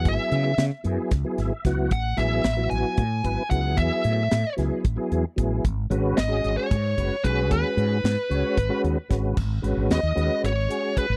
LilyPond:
<<
  \new Staff \with { instrumentName = "Lead electric guitar" } { \time 7/8 \key gis \phrygian \tempo 4 = 113 e''4 r2 r8 | fis''8 e''4 gis''4. fis''8 | e''4. r2 | r4 dis''8. cis''4~ cis''16 b'8 |
b'2~ b'8 r4 | \key gis \minor r4 dis''4 cis''4 b'8 | }
  \new Staff \with { instrumentName = "Tonewheel organ" } { \time 7/8 \key gis \phrygian << { r2 r8 e''8 fis''8 | r2. r8 | r2. r8 | r2. r8 |
r2. r8 | \key gis \minor r2. r8 | } \\ { <fis b e' gis'>4 r8 <fis b e' gis'>8 r16 <fis b e' gis'>8 r16 <fis b e' fis'>8 | r8 <fis b e' gis'>8 r16 <fis b e' fis'>8. r8 <fis b e' b'>16 r16 <fis b e' gis'>8~ | <fis b e' gis'>4 r8 <fis b e' gis'>8 r16 <fis b e' gis'>8 r16 <fis b e' gis'>8 | r8 <gis cis' fis' b'>8 r16 <gis cis' fis' gis'>8. r8 <gis cis' fis' b'>16 r16 <gis cis' fis' gis'>8~ |
<gis cis' fis' gis'>4 r8 <gis cis' fis' cis''>8 r16 <gis cis' fis' b'>8 r16 <gis cis' fis' b'>8 | r8 <gis cis' fis' b'>8. r16 <gis cis' fis' b'>8. r16 <gis cis' fis' gis'>8. r16 | } >> }
  \new Staff \with { instrumentName = "Fretless electric bass" } { \clef bass \time 7/8 \key gis \phrygian gis,,16 r16 cis8 cis16 r16 fis,16 r16 cis,16 r16 gis,,16 r16 cis,8 | a,,8 a,,8 a,,8 a,,16 r16 a,8 gis,,16 r16 cis,8 | e,16 r16 a,8 a,16 r16 cis,16 r16 a,,16 r16 e,16 r16 a,,8 | gis,,8 gis,,8 gis,,8 gis,,16 r16 gis,8 fis,,16 r16 b,,8 |
dis,16 r16 gis,8 gis,16 r16 cis,16 r16 gis,,16 r16 dis,16 r16 gis,,8 | \key gis \minor gis,,8 gis,,16 gis,,16 dis,16 dis,16 dis,16 r16 gis,,8 r8. gis,,16 | }
  \new DrumStaff \with { instrumentName = "Drums" } \drummode { \time 7/8 <hh bd>8 hh8 <hh sn>8 hh8 <hh bd sn>8 <hh sn>8 <hh bd sn>8 | <hh bd>8 <hh sn>8 <hh sn>8 hh8 <hh bd>8 <hh bd>8 <hh bd>8 | <hh bd>8 hh8 <hh sn>8 <hh sn>8 <hh bd>8 hh8 <hh bd>8 | <hh bd>8 hh8 <hh sn>8 hh8 <hh bd>8 <hh bd>8 <hh bd>8 |
<hh bd>8 hh8 <hh sn>8 hh8 <hh bd>8 hh8 <hh bd sn>8 | <cymc bd>8 hh8 <hh sn>8 hh8 hh8 hh8 <hh bd>8 | }
>>